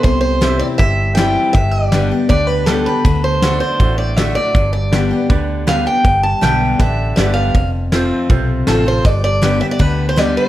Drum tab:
HH |o-o-o-o-|o-o-o-o-|o-o-o-o-|o-o-o-o-|
SD |--o---o-|--o---o-|--o---o-|--o---o-|
BD |o---o---|o---o---|o---o---|o---o---|

HH |o-o-o---|o-o-o-o-|o-o-o-o-|
SD |--o---o-|--o---o-|--o---o-|
BD |o---o---|o---o---|o---o---|